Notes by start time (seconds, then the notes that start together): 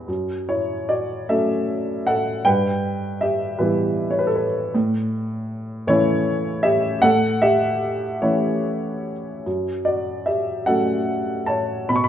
Already playing: E4
0.08 F#2
0.49 E4 C#5
0.89 F#4 D5
1.29 F#3 A3 C#4 A4 E5
2.07 A4 F#5
2.45 G2 B4 G5
3.21 G4 E5
3.59 E3 G3 B3 E4 B4
4.11 C#5
4.19 B4
4.27 A4
4.36 B4
4.75 A2
5.87 C#3 E3 A3 E4 C#5
6.63 G4 E5
7.02 A2 A4 F#5
7.42 G4 E5
8.22 E3 A3 C#4 E4 C#5
9.46 F#2
9.85 F#4 D5
10.26 G4 E5
10.66 F#3 A3 C#4 A4 F#5
11.46 C#5 A5
11.89 B2 B5
11.96 C#6
12.04 B5